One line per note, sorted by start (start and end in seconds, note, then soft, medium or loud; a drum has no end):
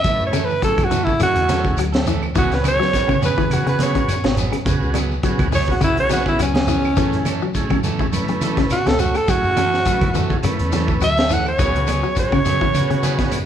0.00 0.15 C#3 medium
0.00 0.36 A3 medium
0.00 0.23 E5 loud
0.04 0.19 F#3 loud
0.04 0.36 C#4 medium
0.04 0.37 E4 medium
0.04 0.37 B4 medium
0.04 kick medium
0.04 closed hi-hat medium
0.04 high conga soft
0.04 shekere medium
0.20 0.60 F#2 medium
0.20 shekere soft
0.27 0.46 C#5 medium
0.33 0.58 C#3 medium
0.33 0.51 E3 medium
0.33 0.52 A3 medium
0.33 0.52 C#4 medium
0.33 0.52 A4 medium
0.33 closed hi-hat medium
0.33 high conga loud
0.33 claves medium
0.33 shekere medium
0.45 0.63 B4 medium
0.50 shekere soft
0.62 0.87 F#3 medium
0.62 0.86 A3 medium
0.62 0.87 C#4 medium
0.62 0.87 E4 medium
0.62 0.87 G#4 medium
0.62 0.86 A4 medium
0.62 muted fingered electric bass stroke soft
0.62 kick medium
0.62 closed hi-hat medium
0.62 shekere medium
0.78 1.18 F#2 medium
0.78 kick medium
0.78 closed hi-hat soft
0.78 high conga medium
0.78 claves medium
0.78 shekere soft
0.85 1.05 F#4 medium
0.91 1.09 E3 medium
0.91 1.16 E3 medium
0.91 1.10 A3 medium
0.91 1.10 C#4 medium
0.91 1.10 A4 medium
0.91 closed hi-hat medium
0.91 high conga medium
0.91 low conga medium
0.91 shekere medium
1.04 1.13 A3 medium
1.04 1.14 C#4 medium
1.04 1.21 E4 medium
1.04 1.14 E4 medium
1.04 1.14 G#4 medium
1.04 kick medium
1.04 shekere soft
1.20 1.35 F#2 loud
1.20 1.45 C#3 medium
1.20 1.84 A3 medium
1.20 1.84 C#4 medium
1.20 1.84 E4 medium
1.20 1.78 F#4 loud
1.20 1.85 G#4 medium
1.20 closed hi-hat medium
1.20 high conga medium
1.20 claves medium
1.20 shekere medium
1.35 1.75 E2 medium
1.35 closed hi-hat soft
1.35 shekere soft
1.48 1.67 E3 medium
1.48 1.74 F#3 medium
1.48 1.67 C#4 medium
1.48 1.67 A4 medium
1.48 snare soft
1.48 closed hi-hat medium
1.48 high conga medium
1.48 shekere medium
1.65 kick medium
1.65 shekere soft
1.77 2.32 D2 medium
1.77 2.03 F#3 medium
1.77 closed hi-hat medium
1.77 high conga soft
1.77 claves medium
1.77 shekere medium
1.92 2.05 A3 soft
1.92 2.05 C#4 medium
1.92 2.05 A4 medium
1.92 snare medium
1.92 closed hi-hat soft
1.92 shekere soft
2.06 2.24 E3 medium
2.06 2.32 E3 medium
2.06 2.24 A3 medium
2.06 2.25 C#4 medium
2.06 2.25 A4 medium
2.06 closed hi-hat soft
2.06 low conga medium
2.06 shekere medium
2.23 claves medium
2.23 shekere soft
2.35 2.50 C#2 medium
2.35 2.60 E3 medium
2.35 2.53 F#3 medium
2.35 2.54 B3 medium
2.35 2.67 B3 medium
2.35 2.54 C#4 medium
2.35 2.67 C#4 medium
2.35 2.68 F#4 medium
2.35 2.56 F#4 medium
2.35 2.54 G#4 medium
2.35 2.68 G#4 medium
2.35 kick medium
2.35 closed hi-hat medium
2.35 high conga soft
2.35 low conga medium
2.35 shekere loud
2.51 2.78 C#2 medium
2.51 2.65 B4 medium
2.51 snare soft
2.51 closed hi-hat soft
2.51 shekere soft
2.63 2.82 F#3 medium
2.63 2.82 B3 medium
2.63 2.82 C#4 medium
2.63 2.83 G#4 medium
2.63 closed hi-hat soft
2.63 high conga medium
2.63 claves medium
2.63 shekere medium
2.68 3.22 C#5 loud
2.79 3.04 F#3 medium
2.79 snare soft
2.79 shekere soft
2.92 3.17 B3 medium
2.92 3.17 C#4 medium
2.92 3.17 F#4 medium
2.92 3.17 G#4 medium
2.92 muted fingered electric bass stroke soft
2.92 kick medium
2.92 snare soft
2.92 closed hi-hat medium
2.92 shekere medium
3.08 3.33 C#3 medium
3.08 3.36 C#3 medium
3.08 kick medium
3.08 high conga medium
3.08 claves medium
3.08 shekere soft
3.21 3.40 B3 medium
3.21 3.40 C#4 medium
3.21 3.40 G#4 medium
3.21 muted clean electric guitar stroke medium
3.21 closed hi-hat soft
3.21 low conga medium
3.21 shekere medium
3.25 3.56 B4 medium
3.37 3.62 E3 medium
3.37 3.45 B3 medium
3.37 3.45 C#4 medium
3.37 3.45 F#4 medium
3.37 3.45 G#4 medium
3.37 kick medium
3.37 shekere soft
3.50 3.66 C#3 medium
3.50 4.15 B3 medium
3.50 4.15 C#4 medium
3.50 4.15 F#4 medium
3.50 3.67 F#4 medium
3.50 4.15 G#4 medium
3.50 closed hi-hat medium
3.50 high conga medium
3.50 low conga medium
3.50 claves medium
3.50 shekere medium
3.66 3.94 C#3 medium
3.66 3.91 C#3 medium
3.66 3.85 B4 medium
3.66 closed hi-hat soft
3.66 shekere soft
3.79 3.98 F#3 medium
3.79 3.98 B3 medium
3.79 3.98 G#4 medium
3.79 closed hi-hat medium
3.79 high conga medium
3.79 shekere medium
3.83 4.37 C#5 medium
3.95 4.20 C#3 medium
3.95 kick medium
3.95 closed hi-hat soft
3.95 shekere soft
4.08 4.23 F#2 medium
4.08 closed hi-hat medium
4.08 high conga soft
4.08 claves medium
4.08 shekere medium
4.24 4.51 G#1 medium
4.24 4.49 B2 medium
4.24 4.36 B3 soft
4.24 4.36 C#4 soft
4.24 4.37 G#4 medium
4.24 snare medium
4.24 closed hi-hat soft
4.24 shekere soft
4.37 4.55 F#3 medium
4.37 4.56 B3 medium
4.37 4.56 C#4 medium
4.37 4.56 G#4 medium
4.37 closed hi-hat soft
4.37 low conga medium
4.37 shekere medium
4.52 4.77 C#3 medium
4.52 closed hi-hat soft
4.52 claves medium
4.52 shekere soft
4.65 4.81 C#3 loud
4.65 4.98 B3 medium
4.65 4.98 C#4 medium
4.65 4.98 F#4 medium
4.65 4.98 G#4 medium
4.65 kick medium
4.65 closed hi-hat medium
4.65 high conga soft
4.65 low conga medium
4.65 shekere medium
4.82 5.22 C#2 medium
4.82 shekere soft
4.94 5.20 C#3 medium
4.94 5.13 F#3 medium
4.94 5.13 B3 medium
4.94 5.13 C#4 medium
4.94 5.14 G#4 medium
4.94 closed hi-hat medium
4.94 high conga loud
4.94 claves medium
4.94 shekere medium
5.11 shekere soft
5.23 5.48 F#3 medium
5.23 5.48 B3 medium
5.23 5.48 C#4 medium
5.23 5.48 F#4 medium
5.23 5.49 G#4 loud
5.23 muted fingered electric bass stroke soft
5.23 kick medium
5.23 closed hi-hat medium
5.23 high conga soft
5.23 shekere medium
5.38 5.79 C#2 medium
5.38 kick medium
5.38 closed hi-hat soft
5.38 high conga medium
5.38 claves medium
5.38 shekere soft
5.52 5.77 E3 medium
5.52 5.71 F#3 medium
5.52 5.71 B3 medium
5.52 5.71 C#4 medium
5.52 5.71 G#4 medium
5.52 5.69 C#5 loud
5.52 open hi-hat medium
5.52 low conga medium
5.52 shekere medium
5.67 5.75 B3 medium
5.67 5.75 C#4 medium
5.67 5.76 F#4 medium
5.67 5.76 G#4 medium
5.67 kick medium
5.67 shekere soft
5.71 5.82 F#4 medium
5.80 5.96 C#2 medium
5.80 6.06 C#3 medium
5.80 6.45 B3 medium
5.80 6.45 C#4 medium
5.80 6.46 F#4 medium
5.80 6.46 G#4 medium
5.80 kick medium
5.80 closed hi-hat medium
5.80 high conga medium
5.80 low conga medium
5.80 claves medium
5.80 shekere medium
5.84 5.98 E4 medium
5.97 6.37 B1 medium
5.97 6.11 C#5 loud
5.97 closed hi-hat soft
5.97 shekere soft
6.09 6.26 F#3 medium
6.09 6.35 F#3 medium
6.09 6.25 B3 medium
6.09 6.25 C#4 medium
6.09 6.27 F#4 medium
6.09 6.24 G#4 medium
6.09 snare soft
6.09 closed hi-hat medium
6.09 high conga loud
6.09 shekere medium
6.25 6.43 B3 soft
6.25 6.43 C#4 soft
6.25 6.40 E4 medium
6.25 6.42 G#4 medium
6.25 kick medium
6.25 shekere soft
6.38 6.94 C#2 medium
6.38 6.64 F#3 medium
6.38 closed hi-hat medium
6.38 high conga soft
6.38 claves medium
6.38 shekere medium
6.43 7.53 C#4 loud
6.54 6.67 B3 soft
6.54 6.68 C#4 soft
6.54 6.68 G#4 medium
6.54 snare medium
6.54 closed hi-hat soft
6.54 high conga medium
6.54 shekere soft
6.67 6.93 E3 medium
6.67 6.86 F#3 medium
6.67 6.87 B3 medium
6.67 6.87 C#4 medium
6.67 6.87 G#4 medium
6.67 closed hi-hat medium
6.67 low conga medium
6.67 shekere medium
6.83 claves medium
6.83 shekere soft
6.96 7.12 F#2 medium
6.96 7.15 E3 medium
6.96 7.22 E3 medium
6.96 7.29 A3 medium
6.96 7.15 A3 medium
6.96 7.29 C#4 medium
6.96 7.16 C#4 medium
6.96 7.29 E4 medium
6.96 7.29 G#4 medium
6.96 7.16 A4 medium
6.96 kick medium
6.96 closed hi-hat medium
6.96 high conga soft
6.96 shekere loud
7.12 7.40 F#2 medium
7.12 closed hi-hat soft
7.12 shekere soft
7.25 7.44 E3 medium
7.25 7.44 A3 medium
7.25 7.44 C#4 medium
7.25 7.45 A4 medium
7.25 closed hi-hat medium
7.25 high conga medium
7.25 claves medium
7.25 shekere medium
7.41 7.67 F#3 medium
7.41 shekere soft
7.54 7.79 A3 medium
7.54 7.79 C#4 medium
7.54 7.79 E4 medium
7.54 7.80 G#4 loud
7.54 muted fingered electric bass stroke soft
7.54 kick medium
7.54 closed hi-hat medium
7.54 high conga soft
7.54 shekere medium
7.70 7.95 C#3 medium
7.70 7.98 F#3 medium
7.70 kick medium
7.70 high conga medium
7.70 claves medium
7.70 shekere soft
7.84 8.02 E3 medium
7.84 8.02 A3 medium
7.84 8.03 C#4 medium
7.84 8.03 A4 medium
7.84 closed hi-hat soft
7.84 high conga medium
7.84 low conga medium
7.84 shekere medium
7.98 8.25 E3 medium
7.98 8.06 A3 medium
7.98 8.06 C#4 medium
7.98 8.07 E4 medium
7.98 8.07 G#4 loud
7.98 kick medium
7.98 shekere soft
8.11 8.28 F#3 loud
8.11 8.76 A3 medium
8.11 8.76 C#4 medium
8.11 8.77 E4 medium
8.11 8.77 B4 loud
8.11 closed hi-hat medium
8.11 high conga medium
8.11 low conga medium
8.11 claves medium
8.11 shekere medium
8.28 8.53 C#3 medium
8.28 8.56 F#3 medium
8.28 closed hi-hat soft
8.28 shekere soft
8.41 8.60 E3 medium
8.41 8.60 A3 medium
8.41 8.60 C#4 medium
8.41 8.61 A4 medium
8.41 closed hi-hat soft
8.41 high conga loud
8.41 shekere medium
8.57 8.82 C#3 medium
8.57 kick medium
8.57 snare soft
8.57 closed hi-hat soft
8.57 shekere soft
8.70 8.85 B2 medium
8.70 8.89 F#4 medium
8.70 closed hi-hat medium
8.70 high conga soft
8.70 claves medium
8.70 shekere medium
8.86 9.14 C#2 medium
8.86 9.11 B2 medium
8.86 8.98 A3 soft
8.86 9.00 C#4 medium
8.86 8.99 A4 soft
8.86 9.02 A4 medium
8.86 snare medium
8.86 closed hi-hat soft
8.86 high conga medium
8.86 shekere soft
8.99 9.18 A3 medium
8.99 9.18 F#4 medium
8.99 9.18 A4 medium
8.99 muted clean electric guitar stroke medium
8.99 closed hi-hat medium
8.99 low conga medium
8.99 shekere medium
9.15 9.32 A4 medium
9.15 muted clean electric guitar stroke medium
9.15 closed hi-hat soft
9.15 claves medium
9.15 shekere soft
9.28 9.43 F#3 loud
9.28 9.60 A3 medium
9.28 9.60 C#4 medium
9.28 9.61 E4 medium
9.28 10.41 F#4 loud
9.28 9.61 G#4 medium
9.28 kick medium
9.28 closed hi-hat medium
9.28 high conga soft
9.28 shekere medium
9.43 9.84 F#2 medium
9.43 shekere soft
9.56 9.82 C#3 medium
9.56 9.75 E3 medium
9.56 9.75 A3 medium
9.56 9.75 C#4 medium
9.56 9.75 A4 medium
9.56 closed hi-hat soft
9.56 high conga loud
9.56 claves medium
9.56 shekere medium
9.73 snare soft
9.73 shekere soft
9.85 10.11 F#3 medium
9.85 10.10 A3 medium
9.85 10.10 C#4 medium
9.85 10.10 E4 medium
9.85 10.11 B4 medium
9.85 muted fingered electric bass stroke soft
9.85 kick medium
9.85 closed hi-hat medium
9.85 high conga soft
9.85 shekere medium
10.01 10.41 F#2 loud
10.01 kick medium
10.01 closed hi-hat soft
10.01 high conga medium
10.01 claves medium
10.01 shekere soft
10.14 10.33 E3 medium
10.14 10.40 E3 medium
10.14 10.33 A3 medium
10.14 10.33 C#4 medium
10.14 10.33 A4 medium
10.14 closed hi-hat soft
10.14 high conga medium
10.14 low conga medium
10.14 shekere medium
10.29 10.37 A3 medium
10.29 10.37 C#4 medium
10.29 10.38 E4 medium
10.29 10.38 G#4 loud
10.29 kick medium
10.29 shekere soft
10.42 10.59 F#2 loud
10.42 10.69 C#3 medium
10.42 11.07 A3 medium
10.42 11.07 C#4 medium
10.42 11.07 E4 medium
10.42 11.08 B4 loud
10.42 closed hi-hat medium
10.42 high conga medium
10.42 claves medium
10.42 shekere medium
10.59 11.00 E2 medium
10.59 closed hi-hat soft
10.59 shekere soft
10.72 10.91 E3 medium
10.72 10.97 F#3 medium
10.72 10.91 A3 medium
10.72 10.91 C#4 medium
10.72 10.91 A4 medium
10.72 snare soft
10.72 closed hi-hat medium
10.72 high conga medium
10.72 shekere medium
10.88 kick medium
10.88 shekere soft
11.01 11.56 D2 medium
11.01 11.26 F#3 medium
11.01 11.35 E5 loud
11.01 closed hi-hat medium
11.01 high conga soft
11.01 claves medium
11.01 shekere medium
11.16 11.29 A3 soft
11.16 11.29 C#4 soft
11.16 11.30 A4 medium
11.16 snare medium
11.16 closed hi-hat soft
11.16 shekere soft
11.29 11.48 E3 medium
11.29 11.55 E3 medium
11.29 11.49 A3 medium
11.29 11.49 C#4 medium
11.29 11.49 A4 medium
11.29 11.46 F#5 medium
11.29 closed hi-hat medium
11.29 low conga medium
11.29 shekere medium
11.45 12.16 C#5 medium
11.45 claves medium
11.45 shekere soft
11.58 11.74 C#2 medium
11.58 11.77 F#3 medium
11.58 11.90 B3 medium
11.58 11.77 B3 medium
11.58 11.91 C#4 medium
11.58 11.77 C#4 medium
11.58 11.91 F#4 medium
11.58 11.78 G#4 medium
11.58 11.91 G#4 medium
11.58 muted clean electric guitar stroke medium
11.58 kick medium
11.58 closed hi-hat medium
11.58 shekere medium
11.74 12.02 C#2 medium
11.74 closed hi-hat soft
11.74 shekere soft
11.87 12.06 F#3 medium
11.87 12.06 B3 medium
11.87 12.06 C#4 medium
11.87 12.06 G#4 medium
11.87 closed hi-hat medium
11.87 high conga loud
11.87 claves medium
11.87 shekere medium
12.03 12.28 F#3 medium
12.03 shekere soft
12.15 12.40 B3 medium
12.15 12.40 C#4 medium
12.15 12.41 F#4 medium
12.15 12.41 G#4 medium
12.15 muted fingered electric bass stroke soft
12.15 kick medium
12.15 closed hi-hat medium
12.15 high conga soft
12.15 shekere medium
12.19 13.30 C#5 loud
12.32 12.60 C#3 medium
12.32 12.57 C#3 medium
12.32 kick medium
12.32 high conga medium
12.32 claves medium
12.32 shekere soft
12.45 12.64 F#3 medium
12.45 12.64 B3 medium
12.45 12.64 C#4 medium
12.45 12.64 G#4 medium
12.45 closed hi-hat medium
12.45 high conga medium
12.45 low conga medium
12.45 shekere medium
12.60 12.86 E3 medium
12.60 12.68 B3 medium
12.60 12.68 C#4 medium
12.60 12.68 F#4 medium
12.60 12.69 G#4 medium
12.60 kick medium
12.60 shekere soft
12.73 12.90 C#3 medium
12.73 13.38 B3 medium
12.73 13.38 C#4 medium
12.73 13.38 F#4 medium
12.73 13.39 G#4 medium
12.73 closed hi-hat medium
12.73 high conga medium
12.73 low conga medium
12.73 claves medium
12.73 shekere medium
12.90 13.15 C#3 medium
12.90 13.18 C#3 medium
12.90 closed hi-hat soft
12.90 shekere soft
13.02 13.18 F#3 medium
13.02 13.19 B3 medium
13.02 13.18 C#4 medium
13.02 13.17 G#4 medium
13.02 closed hi-hat soft
13.02 high conga medium
13.02 shekere medium
13.19 13.36 B3 soft
13.19 13.35 C#4 medium
13.19 13.35 G#4 medium
13.19 muted clean electric guitar stroke medium
13.19 kick medium
13.19 snare soft
13.19 closed hi-hat soft
13.19 shekere soft
13.32 13.46 F#2 medium
13.32 closed hi-hat medium
13.32 high conga soft
13.32 claves medium
13.32 shekere medium